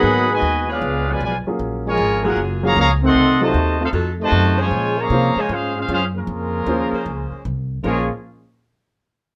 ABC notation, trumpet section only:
X:1
M:4/4
L:1/8
Q:"Swing" 1/4=154
K:Bbm
V:1 name="Trumpet section"
[Aeg_c'] [G_cea]2 [=DAcf]2 [Fc=da] [Fcda] z | z [FBda]2 [DABg] z [Adfb] [Adfb] [=Aegc']- | [=Aegc'] [Gce=a]2 [EAcf] z [Gcea]2 [Fcd_a]- | [Fcda] [Adfb]2 [Fcda] [DAcf] [DAcf] [DAcf] [A,DFB]- |
[A,DFB]6 z2 | [B,FAd] z6 z |]